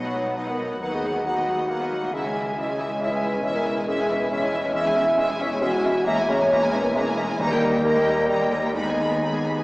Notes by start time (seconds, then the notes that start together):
Already playing: B1 B2 F#3 B3 D#4 F#4 C#5 D#5 F#5
0.04 B3 F#4 F#5
0.15 F#3 D#4 F#4 D#5
0.26 B3 F#4 F#5
0.36 F#3 B3 D#4 B4 D#5 F#5
0.47 B3 F#4 A#4 F#5
0.58 F#3 B3 D#4 D#5
0.70 B3 F#4 F#5
0.81 D#2 D#3 F#3 B3 D#4 B4 F#5
0.92 B3 F#4 G#4 D#5
1.03 F#3 D#4 F#5
1.13 B3 F#4 D#5
1.24 F#3 B3 D#4 F#4 B4 F#5
1.35 B3 F#4 D#5
1.46 F#3 D#4 F#4 F#5
1.57 B3 F#4 D#5
1.68 F#3 A#3 D#4 F#5
1.79 B3 F#4 D#5
1.91 F#3 D#4 F#5
2.02 B3 F#4 D#5
2.13 C#2 C#3 E3 G#3 C#4 E4 G#4 E5
2.24 G#3 C#4 G#5
2.35 E3 E4 E5
2.46 G#3 C#4 G#5
2.56 E3 E4 D#5 E5
2.67 G#3 C#4 G#5
2.78 E3 E4 G#4 E5
2.90 G#3 C#4 G#5
3.00 E3 G#3 C#4 E4 C#5 E5
3.10 G#3 C#4 B4 G#5
3.21 E3 G#3 E4 E5
3.33 G#3 C#4 G#5
3.42 E1 E2 E3 G#3 C#4 C#5 E5
3.53 G#3 E4 A#4 G#5
3.65 E3 C#4 E4 E5
3.77 G#3 E4 G#5
3.87 E3 G#3 C#4 G#4 E5
3.98 G#3 E4 G#5
4.09 E3 C#4 B4 C#5 E5
4.20 G#3 E4 G#5
4.30 E3 G#3 C#4 E4 C#5 E5
4.42 G#3 E4 G#5
4.52 E3 C#4 E5
4.64 G#3 E4 G#5
4.74 E3 G#3 C#4 E5
4.86 G#3 E4 G#5
4.95 E3 G#3 C#4 E4 E5
5.06 G#3 E4 G#5
5.17 E3 G#3 C#4 G#4 E5
5.29 G#3 E4 G#5
5.39 E3 G#3 C#4 C#5 E5
5.50 G#3 E4 G#5
5.61 E3 G#3 C#4 E4 F#4 E5
5.71 G#3 E4 G#5
5.83 E3 G#3 C#4 E5
5.95 G#3 E4 G#5
6.05 E1 E2 E3 G#3 A#3 C#4 E5 A#5
6.17 A#3 E4 G#5
6.28 G#3 A#3 C#4 C#5 E5 A#5
6.39 A#3 E4 G#5
6.50 G#3 A#3 C#4 G#4 E5 A#5
6.61 A#3 E4 G#5
6.72 G#3 A#3 C#4 A#4 B4 E5 A#5
6.84 A#3 E4 G#5
6.94 G#3 A#3 C#4 C#5 E5 A#5
7.06 A#3 E4 G#5
7.16 G#3 A#3 C#4 E5 A#5
7.29 A#3 E4 G#5
7.38 D#2 D#3 G3 A#3 D#4 B4 D#5 A#5
7.51 A#3 G4 A#4 G5
7.62 G3 D#4 A#5
7.73 A#3 G4 G5
7.83 G3 A#3 D#4 G4 A#4 D#5 A#5
7.96 A#3 G4 G5
8.06 G3 D#4 A#4 A#5
8.18 A#3 G4 G5
8.28 G3 A#3 D#4 G4 D#5 A#5
8.40 A#3 G4 G5
8.51 G3 A#3 D#4 A#4 A#5
8.62 A#3 G4 G5
8.74 D#3 G#3 B3 D#4 D#5 B5
8.86 B3 G#4 G#5
8.97 G#3 D#4 B5
9.09 B3 G#4 G#5
9.20 G#3 D#4 G#4 B5
9.32 B3 G#4 G#5
9.44 G#3 D#4 B4 B5
9.56 B3 G#4 G#5